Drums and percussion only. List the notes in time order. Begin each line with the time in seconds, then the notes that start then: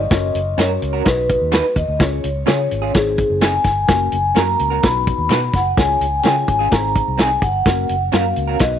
0.11 kick, snare, closed hi-hat
0.34 closed hi-hat, tambourine
0.59 snare, clap, closed hi-hat, tambourine
0.82 closed hi-hat, tambourine
1.05 kick, snare, closed hi-hat, tambourine
1.29 kick, closed hi-hat, tambourine
1.53 snare, clap, closed hi-hat, tambourine
1.76 kick, closed hi-hat, tambourine
2.00 kick, snare, closed hi-hat, tambourine
2.24 closed hi-hat, tambourine
2.47 snare, clap, closed hi-hat, tambourine
2.71 closed hi-hat, tambourine
2.94 kick, snare, closed hi-hat, tambourine
3.18 kick, closed hi-hat
3.41 snare, clap, closed hi-hat, tambourine
3.64 kick, snare, closed hi-hat, tambourine
3.88 kick, snare, closed hi-hat
4.12 closed hi-hat, tambourine
4.36 snare, clap, closed hi-hat, tambourine
4.59 closed hi-hat, tambourine
4.83 kick, snare, closed hi-hat, tambourine
5.07 kick, closed hi-hat, tambourine
5.30 snare, clap, closed hi-hat, tambourine
5.54 kick, snare, closed hi-hat, tambourine
5.77 kick, snare, closed hi-hat
6.01 closed hi-hat, tambourine
6.25 snare, clap, closed hi-hat, tambourine
6.48 kick, closed hi-hat, tambourine
6.71 kick, snare, closed hi-hat, tambourine
6.96 kick, closed hi-hat
7.18 snare, clap, closed hi-hat, tambourine
7.42 kick, closed hi-hat, tambourine
7.66 kick, snare, closed hi-hat
7.89 closed hi-hat, tambourine
8.13 snare, clap, closed hi-hat, tambourine
8.36 closed hi-hat, tambourine
8.59 kick, snare, closed hi-hat, tambourine